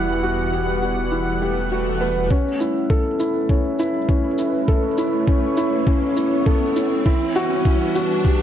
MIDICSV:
0, 0, Header, 1, 7, 480
1, 0, Start_track
1, 0, Tempo, 594059
1, 1864, Time_signature, 4, 2, 24, 8
1, 6807, End_track
2, 0, Start_track
2, 0, Title_t, "Felt piano"
2, 0, Program_c, 0, 0
2, 0, Control_c, 0, 64, 127
2, 0, Note_on_c, 0, 64, 76
2, 0, Note_on_c, 0, 66, 79
2, 0, Note_on_c, 0, 67, 72
2, 81, Note_off_c, 0, 64, 0
2, 186, Note_off_c, 0, 66, 0
2, 186, Note_on_c, 0, 66, 65
2, 413, Note_off_c, 0, 66, 0
2, 427, Note_off_c, 0, 67, 0
2, 427, Note_on_c, 0, 67, 66
2, 562, Note_off_c, 0, 67, 0
2, 664, Note_on_c, 0, 66, 64
2, 892, Note_off_c, 0, 66, 0
2, 902, Note_on_c, 0, 64, 70
2, 1131, Note_off_c, 0, 64, 0
2, 1146, Note_on_c, 0, 67, 78
2, 1373, Note_off_c, 0, 67, 0
2, 1387, Note_on_c, 0, 66, 65
2, 1613, Note_off_c, 0, 66, 0
2, 1622, Note_on_c, 0, 71, 82
2, 1851, Note_off_c, 0, 71, 0
2, 1864, Note_on_c, 0, 61, 77
2, 1874, Control_c, 0, 64, 0
2, 2001, Note_off_c, 0, 61, 0
2, 2013, Control_c, 0, 64, 127
2, 2104, Note_on_c, 0, 64, 67
2, 2332, Note_off_c, 0, 64, 0
2, 2343, Note_on_c, 0, 69, 66
2, 2480, Note_off_c, 0, 69, 0
2, 2583, Note_on_c, 0, 64, 65
2, 2811, Note_off_c, 0, 64, 0
2, 2825, Note_on_c, 0, 61, 65
2, 3052, Note_off_c, 0, 61, 0
2, 3065, Note_on_c, 0, 64, 83
2, 3201, Note_off_c, 0, 64, 0
2, 3304, Note_on_c, 0, 61, 66
2, 3441, Note_off_c, 0, 61, 0
2, 3546, Note_on_c, 0, 64, 62
2, 3773, Note_off_c, 0, 64, 0
2, 3783, Note_on_c, 0, 69, 78
2, 3920, Note_off_c, 0, 69, 0
2, 4023, Note_on_c, 0, 64, 68
2, 4252, Note_off_c, 0, 64, 0
2, 4263, Note_on_c, 0, 61, 65
2, 4491, Note_off_c, 0, 61, 0
2, 4503, Note_on_c, 0, 64, 88
2, 4640, Note_off_c, 0, 64, 0
2, 4743, Note_on_c, 0, 61, 74
2, 4880, Note_off_c, 0, 61, 0
2, 4982, Note_on_c, 0, 64, 65
2, 5211, Note_off_c, 0, 64, 0
2, 5221, Note_on_c, 0, 69, 70
2, 5359, Note_off_c, 0, 69, 0
2, 5462, Note_on_c, 0, 64, 67
2, 5690, Note_off_c, 0, 64, 0
2, 5702, Note_on_c, 0, 64, 81
2, 5714, Control_c, 0, 64, 0
2, 5870, Control_c, 0, 64, 127
2, 5931, Note_off_c, 0, 64, 0
2, 5945, Note_on_c, 0, 66, 96
2, 6081, Note_off_c, 0, 66, 0
2, 6188, Note_on_c, 0, 64, 68
2, 6323, Note_off_c, 0, 64, 0
2, 6425, Note_on_c, 0, 66, 72
2, 6653, Note_off_c, 0, 66, 0
2, 6669, Note_on_c, 0, 67, 73
2, 6803, Note_off_c, 0, 67, 0
2, 6807, End_track
3, 0, Start_track
3, 0, Title_t, "Analog synth pad"
3, 0, Program_c, 1, 89
3, 0, Note_on_c, 1, 52, 64
3, 0, Note_on_c, 1, 55, 75
3, 0, Note_on_c, 1, 59, 62
3, 0, Note_on_c, 1, 78, 77
3, 1863, Note_off_c, 1, 52, 0
3, 1863, Note_on_c, 1, 57, 69
3, 2302, Note_on_c, 1, 71, 68
3, 2315, Note_on_c, 1, 64, 75
3, 3162, Note_off_c, 1, 78, 0
3, 3400, Note_off_c, 1, 55, 0
3, 3400, Note_off_c, 1, 59, 0
3, 3594, Note_on_c, 1, 73, 82
3, 5702, Note_on_c, 1, 52, 79
3, 5704, Note_off_c, 1, 57, 0
3, 5896, Note_on_c, 1, 59, 85
3, 6045, Note_on_c, 1, 55, 84
3, 6328, Note_off_c, 1, 64, 0
3, 6758, Note_on_c, 1, 78, 73
3, 6807, Note_off_c, 1, 52, 0
3, 6807, Note_off_c, 1, 55, 0
3, 6807, Note_off_c, 1, 59, 0
3, 6807, Note_off_c, 1, 71, 0
3, 6807, Note_off_c, 1, 73, 0
3, 6807, Note_off_c, 1, 78, 0
3, 6807, End_track
4, 0, Start_track
4, 0, Title_t, "Detuned saw bass"
4, 0, Program_c, 2, 39
4, 0, Note_on_c, 2, 28, 79
4, 1840, Note_off_c, 2, 28, 0
4, 6807, End_track
5, 0, Start_track
5, 0, Title_t, "Riser"
5, 0, Program_c, 3, 103
5, 1863, Note_on_c, 3, 60, 67
5, 6807, Note_off_c, 3, 60, 0
5, 6807, End_track
6, 0, Start_track
6, 0, Title_t, "Swell"
6, 0, Program_c, 4, 103
6, 903, Note_on_c, 4, 60, 69
6, 1863, Note_off_c, 4, 60, 0
6, 6807, End_track
7, 0, Start_track
7, 0, Title_t, "Drums"
7, 1863, Note_on_c, 9, 36, 85
7, 1943, Note_off_c, 9, 36, 0
7, 2103, Note_on_c, 9, 82, 50
7, 2184, Note_off_c, 9, 82, 0
7, 2343, Note_on_c, 9, 36, 93
7, 2424, Note_off_c, 9, 36, 0
7, 2582, Note_on_c, 9, 82, 54
7, 2663, Note_off_c, 9, 82, 0
7, 2823, Note_on_c, 9, 36, 88
7, 2903, Note_off_c, 9, 36, 0
7, 3063, Note_on_c, 9, 82, 53
7, 3144, Note_off_c, 9, 82, 0
7, 3302, Note_on_c, 9, 36, 89
7, 3383, Note_off_c, 9, 36, 0
7, 3541, Note_on_c, 9, 82, 56
7, 3622, Note_off_c, 9, 82, 0
7, 3782, Note_on_c, 9, 36, 94
7, 3863, Note_off_c, 9, 36, 0
7, 4022, Note_on_c, 9, 82, 52
7, 4103, Note_off_c, 9, 82, 0
7, 4262, Note_on_c, 9, 36, 96
7, 4343, Note_off_c, 9, 36, 0
7, 4501, Note_on_c, 9, 82, 59
7, 4582, Note_off_c, 9, 82, 0
7, 4741, Note_on_c, 9, 36, 96
7, 4822, Note_off_c, 9, 36, 0
7, 4983, Note_on_c, 9, 82, 55
7, 5063, Note_off_c, 9, 82, 0
7, 5222, Note_on_c, 9, 36, 94
7, 5302, Note_off_c, 9, 36, 0
7, 5465, Note_on_c, 9, 82, 63
7, 5546, Note_off_c, 9, 82, 0
7, 5702, Note_on_c, 9, 36, 95
7, 5783, Note_off_c, 9, 36, 0
7, 5944, Note_on_c, 9, 82, 55
7, 6025, Note_off_c, 9, 82, 0
7, 6183, Note_on_c, 9, 36, 101
7, 6264, Note_off_c, 9, 36, 0
7, 6426, Note_on_c, 9, 82, 63
7, 6507, Note_off_c, 9, 82, 0
7, 6664, Note_on_c, 9, 36, 107
7, 6745, Note_off_c, 9, 36, 0
7, 6807, End_track
0, 0, End_of_file